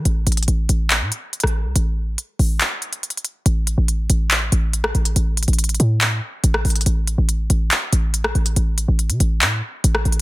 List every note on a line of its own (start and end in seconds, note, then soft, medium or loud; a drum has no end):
0.05 0.26 A1 loud
0.05 closed hi-hat medium
0.27 0.47 A1 loud
0.27 closed hi-hat medium
0.32 closed hi-hat medium
0.37 closed hi-hat medium
0.43 closed hi-hat medium
0.48 0.68 A1 loud
0.48 closed hi-hat medium
0.69 1.03 A1 loud
0.69 closed hi-hat medium
0.90 clap loud
0.90 closed hi-hat medium
1.01 1.11 A2 loud
1.12 closed hi-hat medium
1.33 closed hi-hat soft
1.40 1.66 A1 loud
1.40 cross-stick medium
1.40 closed hi-hat medium
1.47 closed hi-hat medium
1.65 1.75 C2 loud
1.76 2.16 A1 loud
1.76 closed hi-hat medium
2.18 closed hi-hat medium
2.39 2.61 A1 loud
2.39 open hi-hat medium
2.61 clap loud
2.61 closed hi-hat medium
2.82 closed hi-hat soft
2.93 closed hi-hat medium
3.03 closed hi-hat medium
3.10 closed hi-hat medium
3.17 closed hi-hat medium
3.25 closed hi-hat medium
3.46 3.76 A1 loud
3.46 closed hi-hat medium
3.67 closed hi-hat medium
3.78 4.08 A1 loud
3.88 closed hi-hat medium
4.10 4.50 A1 loud
4.10 closed hi-hat medium
4.31 clap loud
4.31 closed hi-hat medium
4.52 4.93 A1 loud
4.52 closed hi-hat medium
4.73 closed hi-hat medium
4.84 cross-stick loud
4.95 5.15 A1 loud
4.95 closed hi-hat soft
5.05 closed hi-hat medium
5.16 5.47 A1 loud
5.16 closed hi-hat medium
5.37 closed hi-hat medium
5.43 closed hi-hat medium
5.48 5.79 A1 loud
5.48 closed hi-hat medium
5.53 closed hi-hat soft
5.59 closed hi-hat medium
5.64 closed hi-hat medium
5.69 closed hi-hat medium
5.75 closed hi-hat soft
5.80 6.21 A2 loud
5.80 closed hi-hat medium
6.01 clap loud
6.01 closed hi-hat medium
6.44 6.64 A1 loud
6.44 closed hi-hat medium
6.54 cross-stick loud
6.65 6.85 A1 loud
6.65 closed hi-hat soft
6.65 open hi-hat medium
6.70 closed hi-hat medium
6.76 closed hi-hat medium
6.81 closed hi-hat medium
6.86 7.17 A1 loud
6.86 closed hi-hat medium
7.07 closed hi-hat medium
7.18 7.49 A1 loud
7.29 closed hi-hat medium
7.50 7.70 A1 loud
7.50 closed hi-hat medium
7.71 clap loud
7.71 closed hi-hat medium
7.93 8.33 A1 loud
7.93 closed hi-hat medium
8.14 closed hi-hat medium
8.24 cross-stick loud
8.35 8.56 A1 loud
8.35 closed hi-hat soft
8.46 closed hi-hat medium
8.56 8.87 A1 loud
8.56 closed hi-hat medium
8.78 closed hi-hat medium
8.88 9.11 A1 loud
8.99 closed hi-hat medium
9.10 9.20 C3 loud
9.10 closed hi-hat medium
9.20 9.43 A1 loud
9.20 closed hi-hat medium
9.41 9.62 A2 loud
9.41 clap loud
9.41 closed hi-hat medium
9.84 10.05 A1 loud
9.84 closed hi-hat medium
9.95 cross-stick medium
10.05 10.21 A1 loud
10.05 closed hi-hat soft
10.12 closed hi-hat medium